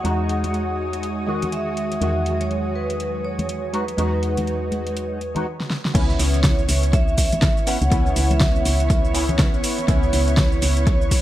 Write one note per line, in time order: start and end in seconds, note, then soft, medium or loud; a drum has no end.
0.00 5.42 G#3 medium
0.00 1.25 G#3 medium
0.00 1.98 F#4 medium
0.00 5.46 F#4 medium
0.00 5.46 C#5 medium
0.00 0.75 F#5 loud
0.00 5.46 G#5 medium
0.00 5.46 C#6 medium
0.00 5.42 D#6 medium
0.00 5.46 D#6 medium
0.05 1.99 E2 medium
0.05 1.25 D#4 medium
0.05 1.26 F#4 medium
0.05 closed hi-hat medium
0.29 closed hi-hat medium
0.44 closed hi-hat soft
0.44 high conga soft
0.54 closed hi-hat soft
0.93 closed hi-hat soft
1.03 closed hi-hat medium
1.26 1.99 D#3 medium
1.26 1.98 G#3 medium
1.26 2.00 F#4 loud
1.42 closed hi-hat medium
1.42 low conga medium
1.52 2.00 E5 loud
1.52 closed hi-hat medium
1.77 closed hi-hat medium
1.92 closed hi-hat soft
2.00 3.96 E2 medium
2.00 3.71 D#3 medium
2.00 5.42 F#3 medium
2.00 3.71 G#3 medium
2.00 3.72 F#4 medium
2.00 2.42 E5 loud
2.00 closed hi-hat medium
2.26 closed hi-hat medium
2.41 2.68 C#5 medium
2.41 closed hi-hat medium
2.51 closed hi-hat soft
2.69 2.75 C#5 medium
2.75 3.21 B4 medium
2.90 closed hi-hat medium
3.00 closed hi-hat medium
3.25 3.75 C#5 medium
3.39 closed hi-hat medium
3.39 high conga medium
3.39 low conga medium
3.49 closed hi-hat medium
3.73 3.84 G#3 medium
3.73 3.84 D#4 medium
3.73 3.85 F#4 medium
3.73 3.97 B4 medium
3.73 closed hi-hat medium
3.88 closed hi-hat medium
3.97 5.46 E2 medium
3.97 5.18 G#3 medium
3.97 5.19 D#4 medium
3.97 5.19 F#4 medium
3.97 5.42 B4 medium
3.97 closed hi-hat medium
4.23 closed hi-hat medium
4.37 closed hi-hat medium
4.37 high conga medium
4.37 low conga medium
4.47 closed hi-hat soft
4.72 closed hi-hat soft
4.72 high conga medium
4.87 closed hi-hat medium
4.97 closed hi-hat medium
5.21 closed hi-hat soft
5.34 5.45 G#3 medium
5.34 5.46 D#4 medium
5.34 5.46 F#4 medium
5.34 closed hi-hat medium
5.34 low conga medium
5.60 snare medium
5.70 snare medium
5.85 snare medium
5.94 6.16 C#2 loud
5.94 7.64 B3 medium
5.94 11.22 B3 medium
5.94 7.65 C#4 medium
5.94 11.22 E4 medium
5.94 7.65 E4 medium
5.94 11.22 C#5 loud
5.94 11.22 C#5 medium
5.94 11.22 C#6 medium
5.94 kick loud
5.94 closed hi-hat medium
5.94 crash medium
5.94 shaker soft
6.10 shaker soft
6.19 6.66 C#2 medium
6.19 open hi-hat loud
6.19 shaker medium
6.34 closed hi-hat medium
6.34 shaker soft
6.44 6.95 C#5 medium
6.44 kick loud
6.44 snare loud
6.44 closed hi-hat soft
6.44 shaker soft
6.59 shaker soft
6.69 7.34 C#2 medium
6.69 11.22 B5 medium
6.69 open hi-hat loud
6.69 shaker medium
6.81 11.22 C#5 medium
6.81 closed hi-hat medium
6.81 shaker soft
6.93 7.17 E5 loud
6.93 kick loud
6.93 closed hi-hat medium
6.93 shaker soft
7.08 shaker soft
7.18 7.69 E5 loud
7.18 kick medium
7.18 open hi-hat loud
7.18 shaker medium
7.32 7.77 G#1 loud
7.32 closed hi-hat medium
7.32 high conga medium
7.32 low conga medium
7.32 shaker soft
7.42 kick loud
7.42 snare loud
7.42 closed hi-hat medium
7.42 shaker soft
7.57 shaker soft
7.66 7.78 B3 medium
7.66 7.78 C#4 medium
7.66 7.78 E4 medium
7.66 8.33 F#5 loud
7.66 open hi-hat loud
7.66 shaker medium
7.82 7.90 C#2 medium
7.82 closed hi-hat medium
7.82 shaker soft
7.90 8.12 C#2 medium
7.90 9.12 B3 medium
7.90 9.12 C#4 medium
7.90 9.13 E4 loud
7.90 kick loud
7.90 closed hi-hat medium
7.90 shaker soft
8.06 shaker soft
8.16 8.62 C#2 medium
8.16 open hi-hat loud
8.16 shaker medium
8.31 8.61 E5 loud
8.31 closed hi-hat medium
8.31 high conga medium
8.31 low conga medium
8.31 shaker soft
8.40 kick loud
8.40 snare loud
8.40 closed hi-hat soft
8.40 shaker soft
8.56 shaker soft
8.60 8.66 F#5 medium
8.65 9.55 C#2 medium
8.65 9.11 E5 loud
8.65 open hi-hat loud
8.65 shaker medium
8.80 closed hi-hat medium
8.80 shaker soft
8.90 kick loud
8.90 closed hi-hat medium
8.90 shaker soft
9.05 shaker soft
9.13 9.85 B3 medium
9.13 9.86 C#4 medium
9.13 9.87 E4 loud
9.13 9.60 C#5 medium
9.13 open hi-hat loud
9.13 shaker medium
9.29 closed hi-hat medium
9.29 low conga medium
9.29 shaker soft
9.39 kick loud
9.39 snare loud
9.39 closed hi-hat medium
9.39 shaker soft
9.54 9.62 B1 loud
9.54 shaker soft
9.64 open hi-hat loud
9.64 shaker medium
9.78 closed hi-hat medium
9.78 shaker soft
9.87 10.09 C#2 loud
9.87 11.22 B3 medium
9.87 11.22 C#4 medium
9.87 11.22 E4 medium
9.87 kick loud
9.87 closed hi-hat medium
9.87 shaker soft
10.03 shaker soft
10.13 10.59 C#2 medium
10.13 open hi-hat loud
10.13 shaker medium
10.28 closed hi-hat medium
10.28 shaker soft
10.37 10.86 C#5 medium
10.37 kick loud
10.37 snare loud
10.37 closed hi-hat soft
10.37 shaker soft
10.52 shaker soft
10.62 11.22 C#2 medium
10.62 open hi-hat loud
10.62 shaker medium
10.77 closed hi-hat medium
10.77 shaker soft
10.87 11.22 C#5 medium
10.87 kick loud
10.87 closed hi-hat medium
10.87 shaker soft
11.01 shaker soft
11.11 kick medium
11.11 open hi-hat loud
11.11 shaker medium